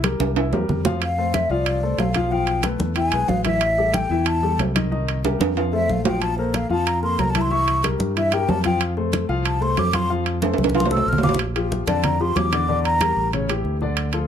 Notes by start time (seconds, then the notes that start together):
Already playing: C2
0.04 G3 G4 A#4, high conga, high timbale
0.20 C2, high conga, high timbale
0.36 E3 E4 E5, high conga, high timbale
0.52 E2 G3 G4 A#4, high conga, low timbale
0.68 F2, low conga
0.85 F3 F4 F5, low conga, low timbale
1.02 F5, high conga, high timbale
1.18 A3 A4 C5, high conga
1.34 E5, high conga, high timbale
1.49 C2 F3 F4 D5 F5, high conga
1.66 high conga, high timbale
1.83 A3 A4 C5, high conga
1.98 B1 F5, high conga, high timbale, low timbale
2.15 F3 F4 F5, high conga, high timbale
2.31 F3 F4 F5 G5, high conga
2.47 high conga, high timbale
2.63 A3 A4 B4, high conga, high timbale
2.79 E2, high conga
2.96 E3 E4 E5 G#5, high conga, high timbale
3.12 B1 G#3 G#4 B4, high conga, high timbale
3.28 A1 F5, high conga, low timbale
3.45 E3 E4 E5, high conga, high timbale
3.61 high conga, high timbale
3.78 G3 G4 A4, high conga
3.94 G5, high conga, high timbale
4.09 E2 E3 E4 E5, high conga
4.26 A5, high conga, high timbale
4.43 G3 G4 A4, high conga
4.58 C2, high conga, high timbale, low timbale
4.75 D#3 D#4 D#5, high conga, high timbale
4.91 D#3 D#4 D#5, high conga
5.08 high conga, high timbale
5.24 G3 G4 A#4, high conga, high timbale
5.40 F2, high conga, high timbale
5.56 F3 F4 F5, high conga, high timbale
5.73 A3 A4 C5 E5, high conga
5.88 A#1 F5, high conga
6.05 F3 F4 F5 G5, high conga, low timbale
6.22 A5, high conga, high timbale
6.38 A#3 A4 A#4 C5, high conga
6.54 F5, high conga, high timbale
6.69 F2 F3 F4 F5 A5, high conga
6.87 A#5, high conga, high timbale
7.02 A#3 A4 A#4 C6, high conga
7.18 C2 A#5, high conga, high timbale, low timbale
7.30 A5
7.35 E3 E4 E5, high conga, high timbale
7.41 C6
7.51 E3 E4 E5 C#6, high conga
7.68 high conga, high timbale
7.83 G3 G4 A#4, high conga, high timbale
7.99 G2, high conga
8.16 E3 E4 E5, high conga, high timbale
8.32 G3 G4 A#4 G5, high conga, high timbale
8.48 F2 A5, high conga, low timbale
8.64 F3 F4 F5 G5, high conga, high timbale
8.81 high conga, high timbale
8.97 A3 A4 C5, high conga
9.13 high conga, high timbale
9.29 C2 F3 F4 F5, high conga
9.46 A5, high conga, high timbale
9.61 A3 A4 C5 C6, high conga
9.77 F2 D6, high conga, high timbale, low timbale
9.93 F3 F4 F5 C6, high conga, high timbale
10.09 F3 F4 F5, high conga
10.26 high conga, high timbale
10.42 A3 A4 C5, high conga, high timbale
10.54 high timbale
10.58 C2, high conga
10.64 high timbale
10.69 high conga
10.74 F3 F4 F5 C6, high timbale
10.80 high conga
10.85 low timbale
10.90 A3 A4 C5 E6, high conga
10.97 low timbale
11.06 A#1 F6
11.12 low conga
11.18 low timbale
11.23 F3 F4 F5 D6, low conga
11.29 low timbale
11.34 low conga
11.39 high timbale
11.55 F3 F4 G4, high conga, high timbale
11.72 high conga
11.87 F2 D3 D4 D5 A5, high conga, high timbale
12.04 A#5, high conga, low conga, high timbale
12.20 F3 F4 G4 C6, high conga
12.36 E2 D6, high conga, high timbale, low timbale
12.52 D3 D4 D5, high conga, high timbale
12.68 D3 D4 D5, high conga
12.84 A#5, high conga, high timbale
13.01 G3 G4 A#4, high conga, high timbale
13.16 A1, high conga
13.33 C#3 C#4 C#5, high conga, high timbale
13.49 E3 E4 G4, high conga, high timbale
13.64 D2, high conga
13.81 D3 D4 D5, high conga
13.97 high conga, high timbale
14.13 F3 F4 A4, high conga, high timbale